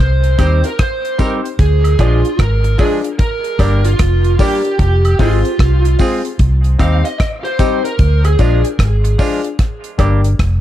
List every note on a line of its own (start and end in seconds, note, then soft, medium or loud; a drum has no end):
0.00 0.34 C2 medium
0.00 0.39 C5 loud
0.24 closed hi-hat soft
0.38 0.61 D#2 medium
0.38 0.60 G3 medium
0.38 0.65 C4 medium
0.38 0.60 C4 medium
0.38 0.65 D#4 medium
0.38 0.60 D#4 medium
0.38 0.65 G4 medium
0.38 0.61 G4 medium
0.38 0.66 C5 medium
0.38 0.63 C5 medium
0.38 kick medium
0.38 closed hi-hat medium
0.38 tambourine medium
0.38 high woodblock medium
0.64 0.79 A#4 medium
0.64 closed hi-hat medium
0.79 1.17 C5 loud
0.79 kick medium
0.79 cross-stick loud
0.79 closed hi-hat medium
1.05 closed hi-hat soft
1.18 1.40 G3 medium
1.18 1.45 C4 medium
1.18 1.40 C4 medium
1.18 1.45 D#4 medium
1.18 1.40 D#4 medium
1.18 1.46 G4 medium
1.18 1.41 G4 medium
1.18 1.30 A#4 medium
1.18 1.46 C5 loud
1.18 kick loud
1.18 closed hi-hat medium
1.18 tambourine medium
1.45 closed hi-hat soft
1.59 1.94 D2 medium
1.59 2.00 G#4 loud
1.59 kick loud
1.59 closed hi-hat medium
1.84 closed hi-hat medium
1.84 high woodblock medium
1.99 2.22 A#1 medium
1.99 2.20 F3 medium
1.99 2.20 G#3 medium
1.99 2.25 D4 medium
1.99 2.21 D4 medium
1.99 2.26 F4 medium
1.99 2.40 F4 medium
1.99 2.26 G#4 medium
1.99 2.21 G#4 medium
1.99 2.26 D5 medium
1.99 kick medium
1.99 closed hi-hat medium
1.99 tambourine medium
2.25 closed hi-hat soft
2.39 2.75 G#1 medium
2.39 2.79 A#4 medium
2.39 kick loud
2.39 cross-stick loud
2.39 closed hi-hat medium
2.64 muted clean electric guitar stroke medium
2.64 closed hi-hat soft
2.78 3.00 F3 medium
2.78 3.00 G#3 medium
2.78 3.05 D4 medium
2.78 3.00 D4 medium
2.78 3.06 F4 medium
2.78 2.90 G#4 medium
2.78 3.06 G#4 medium
2.78 3.01 G#4 medium
2.78 3.06 D5 medium
2.78 kick medium
2.78 open hi-hat medium
2.78 tambourine medium
2.78 high woodblock medium
3.04 closed hi-hat soft
3.19 3.86 A#4 medium
3.19 kick loud
3.19 closed hi-hat medium
3.44 closed hi-hat soft
3.58 3.95 G1 loud
3.58 3.80 G3 medium
3.58 3.80 A#3 medium
3.58 3.85 D4 medium
3.58 3.81 D4 medium
3.58 3.85 G4 medium
3.58 3.81 G4 medium
3.58 3.86 A#4 medium
3.58 3.86 D5 loud
3.58 kick loud
3.58 closed hi-hat medium
3.58 tambourine soft
3.58 high woodblock medium
3.85 4.39 F4 medium
3.85 closed hi-hat medium
3.99 4.35 F1 medium
3.99 kick loud
3.99 cross-stick loud
3.99 closed hi-hat medium
4.24 closed hi-hat soft
4.39 4.60 G3 medium
4.39 4.61 A#3 medium
4.39 4.65 D4 medium
4.39 4.61 D4 medium
4.39 4.66 G4 medium
4.39 4.79 G4 medium
4.39 4.61 G4 medium
4.39 4.63 A#4 medium
4.39 4.63 D5 loud
4.39 kick loud
4.39 open hi-hat medium
4.39 tambourine medium
4.65 4.70 A#4 soft
4.65 4.70 D5 soft
4.65 closed hi-hat medium
4.79 5.15 F1 loud
4.79 5.20 G4 medium
4.79 kick loud
4.79 closed hi-hat medium
5.05 closed hi-hat soft
5.05 high woodblock medium
5.19 5.42 G#1 medium
5.19 5.41 G#3 medium
5.19 5.46 C4 medium
5.19 5.41 C4 medium
5.19 5.46 F4 medium
5.19 5.96 F4 medium
5.19 5.41 F4 medium
5.19 5.46 G#4 medium
5.19 5.41 G#4 medium
5.19 5.46 C5 medium
5.19 kick medium
5.19 open hi-hat medium
5.19 tambourine soft
5.45 closed hi-hat soft
5.59 5.95 C2 medium
5.59 kick loud
5.59 cross-stick loud
5.59 closed hi-hat medium
5.85 muted clean electric guitar stroke soft
5.85 closed hi-hat medium
5.99 6.21 G#3 medium
5.99 6.25 C4 medium
5.99 6.21 C4 medium
5.99 6.26 F4 medium
5.99 6.21 F4 medium
5.99 6.26 G#4 medium
5.99 6.21 G#4 medium
5.99 6.26 C5 medium
5.99 kick medium
5.99 open hi-hat medium
5.99 tambourine medium
6.25 closed hi-hat medium
6.39 6.75 C2 loud
6.39 kick loud
6.39 closed hi-hat medium
6.64 closed hi-hat soft
6.79 7.02 D#2 medium
6.79 7.00 G3 medium
6.79 7.05 C4 medium
6.79 7.01 C4 medium
6.79 7.06 D#4 medium
6.79 7.01 D#4 medium
6.79 7.06 G4 medium
6.79 7.01 G4 medium
6.79 7.06 C5 medium
6.79 7.03 F5 loud
6.79 kick loud
6.79 closed hi-hat medium
6.79 tambourine medium
6.79 high woodblock medium
7.05 7.18 D#5 medium
7.05 muted clean electric guitar stroke soft
7.05 closed hi-hat medium
7.19 7.26 D#5 loud
7.19 kick loud
7.19 cross-stick loud
7.19 closed hi-hat loud
7.44 7.84 C5 medium
7.44 closed hi-hat soft
7.59 7.80 G3 medium
7.59 7.85 C4 medium
7.59 7.80 C4 medium
7.59 7.86 D#4 medium
7.59 7.81 D#4 medium
7.59 7.86 G4 medium
7.59 7.81 G4 medium
7.59 7.86 C5 medium
7.59 kick loud
7.59 closed hi-hat medium
7.59 tambourine medium
7.84 8.25 A#4 medium
7.84 closed hi-hat soft
7.99 8.35 D2 loud
7.99 kick loud
7.99 closed hi-hat medium
8.25 8.62 G#4 medium
8.25 closed hi-hat medium
8.25 high woodblock medium
8.39 8.62 A#1 medium
8.39 8.60 F3 medium
8.39 8.61 G#3 medium
8.39 8.65 D4 medium
8.39 8.61 D4 medium
8.39 8.66 F4 medium
8.39 8.61 F4 medium
8.39 8.66 G#4 medium
8.39 8.66 D5 loud
8.39 kick medium
8.39 closed hi-hat medium
8.39 tambourine medium
8.65 closed hi-hat medium
8.79 9.15 G#1 medium
8.79 kick loud
8.79 cross-stick loud
8.79 closed hi-hat medium
9.04 muted clean electric guitar stroke medium
9.04 closed hi-hat medium
9.19 9.40 F3 medium
9.19 9.40 G#3 medium
9.19 9.45 D4 medium
9.19 9.40 D4 medium
9.19 9.46 F4 medium
9.19 9.41 F4 medium
9.19 9.46 G#4 medium
9.19 9.46 D5 medium
9.19 kick medium
9.19 open hi-hat medium
9.19 tambourine medium
9.44 closed hi-hat medium
9.59 kick loud
9.59 cross-stick medium
9.59 closed hi-hat medium
9.84 closed hi-hat soft
9.98 10.34 G1 medium
9.98 10.20 G3 medium
9.98 10.20 A#3 medium
9.98 10.25 D4 medium
9.98 10.21 D4 medium
9.98 10.25 G4 medium
9.98 10.21 G4 medium
9.98 10.25 A#4 medium
9.98 10.26 D5 loud
9.98 kick medium
9.98 closed hi-hat medium
9.98 tambourine soft
9.98 high woodblock medium
10.24 closed hi-hat medium
10.39 10.61 F1 loud
10.39 kick loud
10.39 cross-stick loud
10.39 closed hi-hat loud